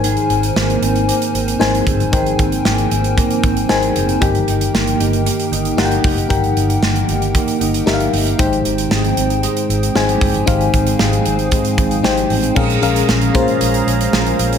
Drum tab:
CC |----------------|----------------|----------------|----------------|
HH |xxxx-xxxxxxx-xxx|xxxx-xxxxxxx-xxx|xxxx-xxxxxxx-xox|xxxx-xxxxxxx-xox|
SD |----o-------o---|----o-------o---|----o-------o---|----o-------o---|
BD |--------------o-|o-o-----o-o-----|o-------------o-|o-------o-------|

CC |----------------|----------------|x---------------|
HH |xxxx-xxxxxxx-xox|xxxx-xxxxxxx-xox|-xxx-xxxxxxx-xxx|
SD |----o-------o---|----o-------o---|----o-------o---|
BD |o-------------o-|o-o-----o-o-----|o-----o---------|